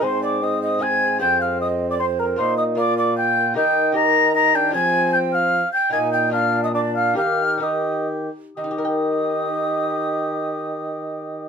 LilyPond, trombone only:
\new Staff \with { instrumentName = "Trombone" } { \clef bass \time 3/4 \key ees \major \tempo 4 = 152 aes,2. | f,2. | bes,2. | ees2. |
f2~ f8 r8 | bes,2. | ees2~ ees8 r8 | ees2.~ |
ees2. | }